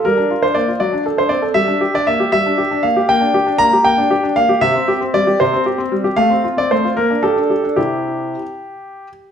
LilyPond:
\new Staff \with { instrumentName = "Grand piano" } { \time 6/8 \key g \dorian \tempo 4. = 78 << { bes'8. c''16 d''8 d''8. c''16 d''8 | e''8. d''16 e''8 e''4 f''8 | \key c \mixolydian g''4 bes''8 g''4 f''8 | e''4 d''8 c''8 r4 |
f''8. d''16 c''8 bes'8 a'4 | g'2~ g'8 r8 | } \\ { g16 d'16 f'16 d'16 bes16 f'16 fis16 d'16 a'16 d'16 c'16 a'16 | g16 d'16 g'16 d'16 bes16 g'16 g16 d'16 g'16 d'16 bes16 g'16 | bes16 d'16 g'16 d'16 bes16 g'16 bes16 d'16 g'16 d'16 bes16 g'16 | c16 c'16 g'16 c'16 g16 g'16 c16 c'16 g'16 c'16 g16 g'16 |
a16 c'16 f'16 c'16 a16 f'16 bes16 d'16 g'16 d'16 g'16 d'16 | <c e'>4. r4. | } >> }